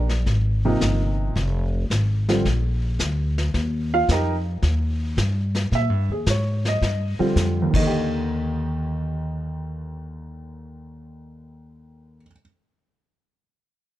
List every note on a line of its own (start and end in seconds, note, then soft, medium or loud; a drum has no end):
0.00 0.24 A#1 medium
0.09 snare soft
0.26 0.79 G#1 medium
0.26 brush sweep soft
0.26 kick soft
0.26 snare soft
0.65 1.33 C3 medium
0.65 1.33 F3 medium
0.65 1.33 A#3 medium
0.65 1.33 D#4 medium
0.81 1.34 G1 medium
0.81 kick soft
0.81 snare medium
0.81 hi-hat pedal medium
1.36 1.89 F1 medium
1.36 brush sweep soft
1.36 kick soft
1.36 snare soft
1.90 2.43 G#1 medium
1.90 kick soft
1.90 snare medium
1.90 hi-hat pedal soft
2.28 2.43 D3 medium
2.28 2.44 G3 medium
2.28 2.44 C4 medium
2.28 2.44 F4 medium
2.28 snare soft
2.45 2.98 A#1 medium
2.45 brush sweep medium
2.45 kick soft
2.45 snare soft
2.99 3.52 D2 medium
2.99 kick soft
2.99 snare medium
2.99 hi-hat pedal medium
3.38 snare soft
3.54 4.07 D#2 medium
3.54 brush sweep medium
3.54 kick soft
3.54 snare soft
3.94 4.09 F4 medium
3.94 4.09 F5 medium
4.09 4.62 F2 medium
4.09 4.33 D#4 medium
4.09 4.33 G4 medium
4.09 4.33 A#4 medium
4.09 4.33 D#5 medium
4.09 kick soft
4.09 snare medium
4.09 hi-hat pedal soft
4.62 5.16 D#2 medium
4.62 brush sweep soft
4.62 kick soft
4.62 snare soft
5.17 5.70 G2 medium
5.17 kick soft
5.17 snare medium
5.17 hi-hat pedal soft
5.55 snare soft
5.72 5.90 A#2 medium
5.72 6.10 E5 medium
5.72 brush sweep soft
5.72 kick soft
5.72 snare soft
5.90 6.08 G2 medium
6.09 6.26 D#2 medium
6.09 6.27 G#4 medium
6.26 6.80 G#2 medium
6.26 6.65 C#5 medium
6.26 kick soft
6.26 snare medium
6.26 hi-hat pedal medium
6.65 7.17 D#5 medium
6.65 snare soft
6.81 7.17 G2 medium
6.81 brush sweep soft
6.81 kick soft
6.81 snare soft
7.19 7.74 D3 medium
7.19 7.74 G3 medium
7.19 7.74 C4 medium
7.19 7.74 F4 medium
7.19 muted upright bass stroke soft
7.36 7.73 F2 medium
7.36 kick soft
7.36 snare medium
7.36 hi-hat pedal medium
7.62 12.15 D#2 medium
7.70 12.22 D#2 medium
7.70 12.23 D#3 medium
7.70 kick medium
7.74 12.25 D#5 medium
7.74 crash medium
7.79 12.31 D3 medium
7.87 12.40 G4 medium